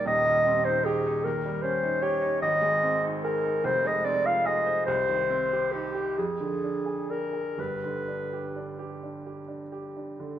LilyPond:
<<
  \new Staff \with { instrumentName = "Clarinet" } { \time 6/8 \key c \minor \tempo 4. = 48 ees''8. c''16 aes'8 bes'8 c''8 des''8 | ees''4 bes'8 c''16 ees''16 d''16 f''16 ees''8 | c''4 g'8 aes'4 bes'8 | b'4. r4. | }
  \new Staff \with { instrumentName = "Grand piano" } { \time 6/8 \key c \minor <ees,, ees,>16 g16 c'16 ees'16 g'16 ees'16 ees,16 g16 des'16 ees'16 g'16 ees'16 | aes,,16 aes16 c'16 ees'16 aes'16 ees'16 f,,16 aes16 c'16 f'16 aes'16 c''16 | c,16 ees16 c'16 g'16 ees'16 g'16 f,16 d16 d'16 aes'16 d'16 aes'16 | <g,, g,>16 d16 d'16 g'16 d'16 g'16 d'16 g'16 d'16 g'16 d'16 d16 | }
>>